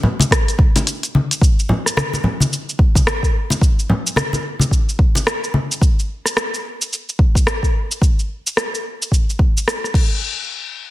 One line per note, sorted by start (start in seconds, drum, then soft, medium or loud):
0.03 low conga medium
0.20 closed hi-hat soft
0.20 high conga medium
0.20 shaker medium
0.31 kick medium
0.31 cross-stick medium
0.31 closed hi-hat medium
0.31 shaker medium
0.48 closed hi-hat soft
0.48 shaker soft
0.59 kick loud
0.59 high conga soft
0.76 closed hi-hat soft
0.76 muted conga medium
0.76 shaker medium
0.87 closed hi-hat medium
0.87 shaker medium
1.03 closed hi-hat soft
1.03 shaker soft
1.15 high conga medium
1.31 closed hi-hat soft
1.31 shaker medium
1.42 kick loud
1.42 shaker medium
1.59 shaker soft
1.69 low conga medium
1.86 cross-stick soft
1.86 shaker medium
1.97 cross-stick loud
1.97 high conga medium
1.97 shaker medium
2.13 muted conga soft
2.13 shaker soft
2.24 low conga medium
2.40 high conga medium
2.40 shaker medium
2.53 shaker medium
2.69 shaker soft
2.79 kick loud
2.95 kick loud
2.95 high conga medium
2.95 shaker medium
3.07 cross-stick loud
3.07 shaker soft
3.23 kick medium
3.23 shaker soft
3.50 muted conga medium
3.50 shaker medium
3.61 kick loud
3.61 shaker medium
3.79 shaker soft
3.90 low conga medium
4.07 shaker medium
4.16 cross-stick loud
4.16 high conga medium
4.16 shaker medium
4.33 muted conga soft
4.33 high conga soft
4.33 shaker soft
4.60 high conga medium
4.60 shaker medium
4.71 kick medium
4.71 shaker medium
4.89 shaker soft
4.99 kick loud
5.15 muted conga medium
5.15 shaker medium
5.27 cross-stick loud
5.27 shaker medium
5.44 shaker soft
5.54 high conga medium
5.72 shaker medium
5.82 kick loud
5.82 shaker medium
6.00 shaker soft
6.26 cross-stick soft
6.26 shaker medium
6.37 cross-stick medium
6.37 shaker medium
6.54 shaker soft
6.82 shaker medium
6.93 shaker medium
7.09 shaker soft
7.19 kick loud
7.35 kick medium
7.35 shaker medium
7.47 cross-stick loud
7.47 shaker medium
7.63 kick medium
7.63 shaker soft
7.92 shaker medium
8.02 kick loud
8.02 shaker medium
8.19 shaker soft
8.47 shaker medium
8.57 cross-stick medium
8.57 shaker medium
8.75 shaker soft
9.02 shaker medium
9.12 kick medium
9.12 shaker medium
9.30 shaker soft
9.39 kick medium
9.57 shaker medium
9.68 cross-stick medium
9.68 shaker medium
9.84 cross-stick soft
9.84 shaker soft
9.94 kick loud
9.94 crash medium